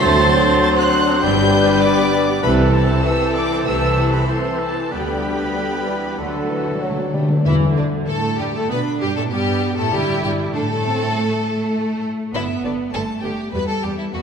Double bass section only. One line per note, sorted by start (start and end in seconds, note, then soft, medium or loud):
0.02 0.53 D2 loud
1.23 1.73 G1 loud
2.43 2.94 C2 loud
3.66 4.18 C2 medium
4.91 5.45 D2 medium
6.19 6.72 D2 medium
7.46 7.74 E2 loud
7.77 8.08 D2 medium
8.08 8.38 A2 loud
8.39 8.54 G2 medium
8.54 8.70 A2 medium
8.70 8.78 B2 loud
9.01 9.16 G2 loud
9.16 9.31 A2 medium
9.31 9.76 G2 loud
9.78 9.92 A2 loud
9.93 10.01 G2 medium
10.24 10.32 G2 loud
10.55 12.02 A2 loud
12.34 12.42 G1 medium
12.64 12.72 G1 medium
12.94 13.02 G1 medium
13.24 13.32 G1 medium
13.54 13.62 E2 medium
13.83 13.91 E2 medium
14.14 14.22 E2 medium